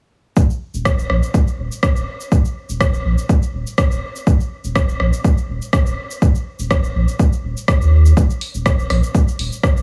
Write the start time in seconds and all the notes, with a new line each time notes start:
0.37 D#1, kick, shaker
0.50 shaker
0.74 D#1, shaker
0.85 kick, cross-stick, shaker
0.99 shaker
1.10 A#1, cross-stick
1.23 shaker
1.34 kick, shaker
1.47 shaker
1.58 D#1
1.72 shaker
1.83 kick, cross-stick, shaker
1.96 D#1, shaker
2.21 shaker
2.32 D#1, kick, shaker
2.45 shaker
2.69 D#1, shaker
2.81 kick, cross-stick, shaker
2.94 shaker
3.05 A#1
3.18 shaker
3.29 kick, shaker
3.43 shaker
3.53 D#1
3.67 shaker
3.78 kick, cross-stick, shaker
3.91 D#1, shaker
4.16 shaker
4.27 D#1, kick, shaker
4.40 shaker
4.64 D#1, shaker
4.76 kick, cross-stick, shaker
4.89 shaker
5.00 A#1, cross-stick
5.13 shaker
5.24 kick, shaker
5.38 shaker
5.49 D#1
5.62 shaker
5.73 kick, cross-stick, shaker
5.86 D#1, shaker
6.11 shaker
6.22 D#1, kick, shaker
6.35 shaker
6.59 D#1, shaker
6.71 kick, cross-stick, shaker
6.84 shaker
6.95 A#1
7.08 shaker
7.19 kick, shaker
7.33 shaker
7.44 D#1
7.57 shaker
7.68 kick, cross-stick, shaker
7.81 D#2, shaker
8.06 shaker
8.17 D#1, kick, shaker
8.30 shaker
8.41 open hi-hat
8.54 D#1, shaker
8.66 kick, cross-stick, shaker
8.79 shaker
8.90 A#1, cross-stick, open hi-hat
9.03 shaker
9.15 kick, shaker
9.28 shaker
9.39 D#1, open hi-hat
9.52 shaker
9.63 kick, cross-stick, shaker
9.76 D#1, shaker